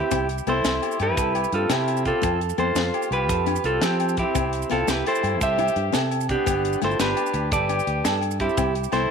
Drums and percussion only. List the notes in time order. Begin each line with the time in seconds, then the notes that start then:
0.11 kick, closed hi-hat, low agogo, maracas
0.29 closed hi-hat
0.38 maracas
0.47 closed hi-hat, low agogo
0.65 snare, closed hi-hat, maracas
0.82 closed hi-hat, low agogo
0.91 maracas
1.00 closed hi-hat, low agogo
1.17 kick, closed hi-hat, maracas
1.35 closed hi-hat, low agogo
1.44 maracas
1.52 closed hi-hat
1.70 snare, closed hi-hat, low agogo, maracas
1.88 closed hi-hat, low agogo
1.97 maracas
2.05 kick, closed hi-hat
2.23 kick, closed hi-hat, low agogo, maracas
2.41 closed hi-hat
2.49 maracas
2.58 closed hi-hat, low agogo
2.76 snare, closed hi-hat, maracas
2.94 closed hi-hat, low agogo
3.02 maracas
3.12 closed hi-hat, low agogo
3.29 kick, closed hi-hat, maracas
3.46 closed hi-hat, low agogo
3.56 maracas
3.64 closed hi-hat
3.82 snare, closed hi-hat, low agogo, maracas
4.00 closed hi-hat, low agogo
4.09 maracas
4.17 kick, closed hi-hat
4.35 kick, closed hi-hat, low agogo, maracas
4.53 closed hi-hat
4.62 maracas
4.71 snare, closed hi-hat, low agogo
4.88 snare, closed hi-hat, maracas
5.06 closed hi-hat, low agogo
5.15 maracas
5.23 closed hi-hat, low agogo
5.41 kick, closed hi-hat, maracas
5.59 closed hi-hat, low agogo
5.68 maracas
5.76 closed hi-hat
5.93 snare, closed hi-hat, low agogo, maracas
6.11 closed hi-hat, low agogo
6.21 maracas
6.29 kick, closed hi-hat
6.46 kick, closed hi-hat, low agogo, maracas
6.65 closed hi-hat
6.73 maracas
6.82 snare, closed hi-hat, low agogo
6.91 maracas
7.00 snare, closed hi-hat, maracas
7.17 closed hi-hat, low agogo, maracas
7.26 maracas
7.33 closed hi-hat, low agogo
7.52 kick, closed hi-hat, maracas
7.69 closed hi-hat, low agogo
7.79 maracas
7.87 closed hi-hat
8.04 snare, closed hi-hat, low agogo, maracas
8.21 closed hi-hat, low agogo
8.31 maracas
8.40 kick, closed hi-hat
8.49 maracas
8.57 kick, closed hi-hat, low agogo, maracas
8.75 closed hi-hat
8.84 maracas
8.92 snare, closed hi-hat, low agogo